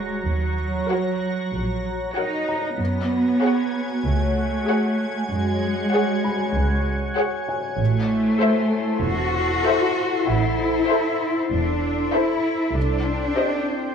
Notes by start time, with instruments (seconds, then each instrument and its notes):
Already playing: cello section G#3, viola section F#4 A#4, ambient pad F#4 C#5 A#5, violin section C#5 F#5, felt piano C#5 C#6, impact
0.26 double bass section D#2, cello section F#3
0.90 viola section F#4 A#4, violin section C#5 F#5
1.53 double bass section A#1
2.16 cello section D#4, viola section F#4 A#4, violin section C#5 F#5
2.49 felt piano A#5
2.78 double bass section F#2, cello section B3, ambient pad F#4 C#5 G#5
3.42 viola section G#4, violin section C#5 F#5
4.06 double bass section C#2, cello section A3
4.69 viola section G#4, violin section C#5 F#5
5.31 double bass section F#2, cello section G#3
5.94 viola section G#4, violin section C#5 F#5
6.24 felt piano B5
6.56 double bass section C#2
7.18 viola section G#4, violin section C#5 F#5
7.49 felt piano G#5
7.79 double bass section A1, cello section A3, ambient pad E4 A4 C5
8.40 viola section A4 C5, violin section C5 E5
9.05 double bass section E1, cello section F#4
9.66 viola section A4 C5, violin section C5 E5
10.27 double bass section A1, cello section E4, felt piano F#5
10.90 viola section A4 C5, violin section C5 E5
11.52 double bass section E1, cello section D4
12.13 cello section E4, viola section A4 C5, violin section C5 E5
12.75 double bass section C2, ambient pad C4 C5 G5, cello section D4
13.38 viola section G4 C5, violin section C5 D#5